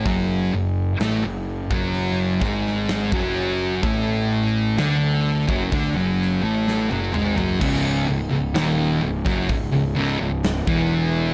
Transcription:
<<
  \new Staff \with { instrumentName = "Distorted electric guitar" } { \clef bass \time 4/4 \key cis \phrygian \tempo 4 = 64 <fis, fis>8 fis,8 <a, a>16 fis,8 <fis, fis>8. <gis, gis>8. <fis, fis>8. | <a, a>4 <d d'>8. <fis, fis>16 <d d'>16 <fis, fis>8 <a, a>8 <fis, fis>16 <gis, gis>16 <fis, fis>16 | <cis, cis>8 cis,16 cis,16 <dis, dis>8 cis,16 <fis, fis>16 cis,16 cis,16 <cis, cis>16 cis,8 <e, e>8. | }
  \new Staff \with { instrumentName = "Distorted electric guitar" } { \clef bass \time 4/4 \key cis \phrygian <fis, fis>8 fis,8 <a, a>16 fis,8 <fis, fis>8. <gis, gis>8. <fis, fis>8. | <a, a>4 <d d'>8. <fis, fis>16 <d d'>16 <fis, fis>8 <a, a>8 <fis, fis>16 <gis, gis>16 <fis, fis>16 | <cis, cis>8 cis,16 cis,16 <dis, dis>8 cis,16 <fis, fis>16 cis,16 cis,16 <cis, cis>16 cis,8 <e, e>8. | }
  \new Staff \with { instrumentName = "Picked electric bass" } { \clef bass \time 4/4 \key cis \phrygian fis,,8 fis,,8 a,,16 fis,,8 fis,,8. gis,,8. fis,,8. | a,,4 d,8. fis,,16 d,16 fis,,8 a,,8 fis,,16 gis,,16 fis,,16 | cis,,8 cis,,16 cis,,16 dis,,8 cis,,16 fis,,16 cis,,16 cis,,16 cis,,16 cis,,8 e,,8. | }
  \new DrumStaff \with { instrumentName = "Drums" } \drummode { \time 4/4 <hho bd>4 <hho sn>8. bd16 hho8 <bd sn>16 sn16 <hho sn>16 bd8. | <hho bd>4 <hho sn>8. bd16 <hho bd>8 sn8 sn16 tommh16 toml16 tomfh16 | <cymc bd>4 <hho sn>8. <bd sn>16 <hho bd>4 <hho sn>16 bd8. | }
>>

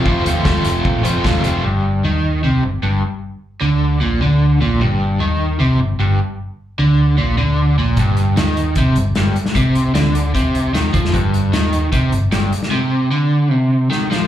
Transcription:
<<
  \new Staff \with { instrumentName = "Overdriven electric guitar" } { \clef bass \time 4/4 \key g \minor \tempo 4 = 152 <f, c f a c' f'>8 <f a c' f'>8 <f a c' f'>4. <f a c' f'>8 <f, c f a c' f'>8 <f a c' f'>8 | g,4 ees4 c8 g,8 g,8 r8 | r4 d4 bes,8 d4 bes,8 | g,4 ees4 c8 g,8 g,8 r8 |
r4 d4 bes,8 d4 bes,8 | g,4 ees4 c8 g,8 g,8 r8 | c4 d4 c4 ees8 f8 | g,4 ees4 c8 g,8 g,8 r8 |
c4 d4 c4 ees8 f8 | }
  \new Staff \with { instrumentName = "Fingered electric bass" } { \clef bass \time 4/4 \key g \minor f,,8 ees,8 ees,8 f,,8 bes,,8 f,,8 ees,8 f,,8 | g,,4 ees,4 c,8 g,,8 g,,8 r8 | r4 d,4 bes,,8 d,4 bes,,8 | g,,4 ees,4 c,8 g,,8 g,,8 r8 |
r4 d,4 bes,,8 d,4 bes,,8 | g,,4 ees,4 c,8 g,,8 g,,8 r8 | c,4 d,4 c,4 ees,8 f,8 | g,,4 ees,4 c,8 g,,8 g,,8 r8 |
r1 | }
  \new DrumStaff \with { instrumentName = "Drums" } \drummode { \time 4/4 bd8 <hh sn>8 <bd sn>8 hh8 bd8 hh8 <bd sn>8 hh8 | r4 r4 r4 r4 | r4 r4 r4 r4 | r4 r4 r4 r4 |
r4 r4 r4 r4 | <hh bd>8 hh8 <hh sn>8 hh8 <hh bd>8 hh8 <hh sn>8 hh16 sn16 | <hh bd>8 hh8 <hh sn>8 hh8 <hh bd>8 hh8 <hh sn>8 <hh bd>16 sn16 | <hh bd>8 hh8 <hh sn>8 hh8 <hh bd>8 hh8 <hh sn>8 hh16 sn16 |
r4 r4 r4 sn8 sn8 | }
>>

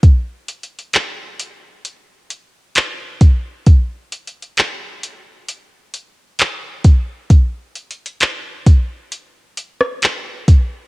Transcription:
\new DrumStaff \with { instrumentName = "Drums" } \drummode { \time 4/4 \tempo 4 = 66 \tuplet 3/2 { <hh bd>16 r16 r16 hh16 hh16 hh16 } <hc hh>8 hh8 hh8 hh8 <hc hh>8 <hh bd>8 | \tuplet 3/2 { <hh bd>16 r16 r16 hh16 hh16 hh16 } <hc hh>8 hh8 hh8 hh8 <hc hh>8 <hh bd>8 | \tuplet 3/2 { <hh bd>16 r16 r16 hh16 hh16 hh16 } <hc hh>8 <hh bd>8 hh8 hh16 ss16 <hc hh>8 <hh bd>8 | }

